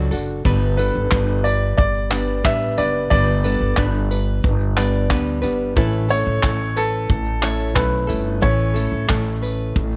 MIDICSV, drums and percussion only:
0, 0, Header, 1, 2, 480
1, 0, Start_track
1, 0, Tempo, 664452
1, 327, Time_signature, 4, 2, 24, 8
1, 7198, End_track
2, 0, Start_track
2, 0, Title_t, "Drums"
2, 88, Note_on_c, 9, 54, 65
2, 91, Note_on_c, 9, 82, 48
2, 160, Note_off_c, 9, 54, 0
2, 164, Note_off_c, 9, 82, 0
2, 205, Note_on_c, 9, 82, 37
2, 277, Note_off_c, 9, 82, 0
2, 323, Note_on_c, 9, 82, 66
2, 326, Note_on_c, 9, 36, 108
2, 396, Note_off_c, 9, 82, 0
2, 398, Note_off_c, 9, 36, 0
2, 448, Note_on_c, 9, 82, 57
2, 520, Note_off_c, 9, 82, 0
2, 565, Note_on_c, 9, 82, 49
2, 568, Note_on_c, 9, 54, 65
2, 638, Note_off_c, 9, 82, 0
2, 640, Note_off_c, 9, 54, 0
2, 683, Note_on_c, 9, 82, 46
2, 756, Note_off_c, 9, 82, 0
2, 803, Note_on_c, 9, 39, 108
2, 805, Note_on_c, 9, 82, 79
2, 808, Note_on_c, 9, 36, 93
2, 875, Note_off_c, 9, 39, 0
2, 877, Note_off_c, 9, 82, 0
2, 880, Note_off_c, 9, 36, 0
2, 929, Note_on_c, 9, 82, 48
2, 1001, Note_off_c, 9, 82, 0
2, 1046, Note_on_c, 9, 54, 58
2, 1119, Note_off_c, 9, 54, 0
2, 1172, Note_on_c, 9, 82, 45
2, 1244, Note_off_c, 9, 82, 0
2, 1287, Note_on_c, 9, 82, 65
2, 1288, Note_on_c, 9, 36, 120
2, 1360, Note_off_c, 9, 36, 0
2, 1360, Note_off_c, 9, 82, 0
2, 1398, Note_on_c, 9, 82, 53
2, 1470, Note_off_c, 9, 82, 0
2, 1526, Note_on_c, 9, 39, 80
2, 1526, Note_on_c, 9, 54, 64
2, 1598, Note_off_c, 9, 39, 0
2, 1598, Note_off_c, 9, 54, 0
2, 1641, Note_on_c, 9, 82, 47
2, 1713, Note_off_c, 9, 82, 0
2, 1758, Note_on_c, 9, 82, 68
2, 1767, Note_on_c, 9, 36, 110
2, 1772, Note_on_c, 9, 39, 113
2, 1830, Note_off_c, 9, 82, 0
2, 1840, Note_off_c, 9, 36, 0
2, 1844, Note_off_c, 9, 39, 0
2, 1882, Note_on_c, 9, 82, 53
2, 1955, Note_off_c, 9, 82, 0
2, 2001, Note_on_c, 9, 82, 49
2, 2008, Note_on_c, 9, 54, 60
2, 2073, Note_off_c, 9, 82, 0
2, 2080, Note_off_c, 9, 54, 0
2, 2117, Note_on_c, 9, 82, 38
2, 2189, Note_off_c, 9, 82, 0
2, 2235, Note_on_c, 9, 82, 66
2, 2248, Note_on_c, 9, 36, 108
2, 2307, Note_off_c, 9, 82, 0
2, 2321, Note_off_c, 9, 36, 0
2, 2355, Note_on_c, 9, 82, 53
2, 2427, Note_off_c, 9, 82, 0
2, 2480, Note_on_c, 9, 82, 49
2, 2485, Note_on_c, 9, 54, 63
2, 2552, Note_off_c, 9, 82, 0
2, 2558, Note_off_c, 9, 54, 0
2, 2602, Note_on_c, 9, 82, 44
2, 2674, Note_off_c, 9, 82, 0
2, 2722, Note_on_c, 9, 39, 106
2, 2723, Note_on_c, 9, 82, 76
2, 2728, Note_on_c, 9, 36, 96
2, 2794, Note_off_c, 9, 39, 0
2, 2795, Note_off_c, 9, 82, 0
2, 2800, Note_off_c, 9, 36, 0
2, 2841, Note_on_c, 9, 82, 50
2, 2914, Note_off_c, 9, 82, 0
2, 2971, Note_on_c, 9, 54, 64
2, 3043, Note_off_c, 9, 54, 0
2, 3084, Note_on_c, 9, 82, 50
2, 3156, Note_off_c, 9, 82, 0
2, 3197, Note_on_c, 9, 82, 65
2, 3208, Note_on_c, 9, 36, 114
2, 3270, Note_off_c, 9, 82, 0
2, 3280, Note_off_c, 9, 36, 0
2, 3320, Note_on_c, 9, 82, 49
2, 3393, Note_off_c, 9, 82, 0
2, 3447, Note_on_c, 9, 39, 88
2, 3447, Note_on_c, 9, 54, 67
2, 3519, Note_off_c, 9, 39, 0
2, 3519, Note_off_c, 9, 54, 0
2, 3565, Note_on_c, 9, 82, 51
2, 3637, Note_off_c, 9, 82, 0
2, 3682, Note_on_c, 9, 82, 65
2, 3686, Note_on_c, 9, 36, 100
2, 3688, Note_on_c, 9, 39, 109
2, 3754, Note_off_c, 9, 82, 0
2, 3759, Note_off_c, 9, 36, 0
2, 3760, Note_off_c, 9, 39, 0
2, 3806, Note_on_c, 9, 82, 51
2, 3878, Note_off_c, 9, 82, 0
2, 3925, Note_on_c, 9, 54, 67
2, 3929, Note_on_c, 9, 82, 51
2, 3997, Note_off_c, 9, 54, 0
2, 4001, Note_off_c, 9, 82, 0
2, 4044, Note_on_c, 9, 82, 40
2, 4116, Note_off_c, 9, 82, 0
2, 4166, Note_on_c, 9, 36, 118
2, 4166, Note_on_c, 9, 82, 64
2, 4238, Note_off_c, 9, 36, 0
2, 4238, Note_off_c, 9, 82, 0
2, 4280, Note_on_c, 9, 82, 56
2, 4353, Note_off_c, 9, 82, 0
2, 4402, Note_on_c, 9, 54, 62
2, 4404, Note_on_c, 9, 82, 50
2, 4474, Note_off_c, 9, 54, 0
2, 4476, Note_off_c, 9, 82, 0
2, 4521, Note_on_c, 9, 82, 47
2, 4593, Note_off_c, 9, 82, 0
2, 4645, Note_on_c, 9, 39, 120
2, 4648, Note_on_c, 9, 36, 99
2, 4648, Note_on_c, 9, 82, 79
2, 4717, Note_off_c, 9, 39, 0
2, 4720, Note_off_c, 9, 82, 0
2, 4721, Note_off_c, 9, 36, 0
2, 4768, Note_on_c, 9, 82, 52
2, 4840, Note_off_c, 9, 82, 0
2, 4889, Note_on_c, 9, 54, 62
2, 4961, Note_off_c, 9, 54, 0
2, 5004, Note_on_c, 9, 82, 46
2, 5076, Note_off_c, 9, 82, 0
2, 5121, Note_on_c, 9, 82, 64
2, 5127, Note_on_c, 9, 36, 115
2, 5193, Note_off_c, 9, 82, 0
2, 5199, Note_off_c, 9, 36, 0
2, 5237, Note_on_c, 9, 82, 51
2, 5309, Note_off_c, 9, 82, 0
2, 5365, Note_on_c, 9, 39, 89
2, 5365, Note_on_c, 9, 54, 65
2, 5437, Note_off_c, 9, 39, 0
2, 5438, Note_off_c, 9, 54, 0
2, 5486, Note_on_c, 9, 82, 53
2, 5558, Note_off_c, 9, 82, 0
2, 5606, Note_on_c, 9, 36, 111
2, 5606, Note_on_c, 9, 39, 112
2, 5606, Note_on_c, 9, 82, 64
2, 5678, Note_off_c, 9, 36, 0
2, 5678, Note_off_c, 9, 39, 0
2, 5679, Note_off_c, 9, 82, 0
2, 5730, Note_on_c, 9, 82, 54
2, 5802, Note_off_c, 9, 82, 0
2, 5847, Note_on_c, 9, 54, 63
2, 5848, Note_on_c, 9, 82, 52
2, 5919, Note_off_c, 9, 54, 0
2, 5920, Note_off_c, 9, 82, 0
2, 5967, Note_on_c, 9, 82, 39
2, 6040, Note_off_c, 9, 82, 0
2, 6087, Note_on_c, 9, 36, 108
2, 6087, Note_on_c, 9, 82, 65
2, 6159, Note_off_c, 9, 82, 0
2, 6160, Note_off_c, 9, 36, 0
2, 6205, Note_on_c, 9, 82, 58
2, 6277, Note_off_c, 9, 82, 0
2, 6327, Note_on_c, 9, 54, 67
2, 6327, Note_on_c, 9, 82, 51
2, 6399, Note_off_c, 9, 54, 0
2, 6399, Note_off_c, 9, 82, 0
2, 6446, Note_on_c, 9, 82, 47
2, 6518, Note_off_c, 9, 82, 0
2, 6565, Note_on_c, 9, 82, 80
2, 6568, Note_on_c, 9, 39, 109
2, 6570, Note_on_c, 9, 36, 100
2, 6638, Note_off_c, 9, 82, 0
2, 6640, Note_off_c, 9, 39, 0
2, 6642, Note_off_c, 9, 36, 0
2, 6683, Note_on_c, 9, 82, 49
2, 6756, Note_off_c, 9, 82, 0
2, 6803, Note_on_c, 9, 82, 48
2, 6815, Note_on_c, 9, 54, 62
2, 6875, Note_off_c, 9, 82, 0
2, 6887, Note_off_c, 9, 54, 0
2, 6929, Note_on_c, 9, 82, 46
2, 7001, Note_off_c, 9, 82, 0
2, 7047, Note_on_c, 9, 82, 69
2, 7050, Note_on_c, 9, 36, 119
2, 7119, Note_off_c, 9, 82, 0
2, 7122, Note_off_c, 9, 36, 0
2, 7166, Note_on_c, 9, 82, 51
2, 7198, Note_off_c, 9, 82, 0
2, 7198, End_track
0, 0, End_of_file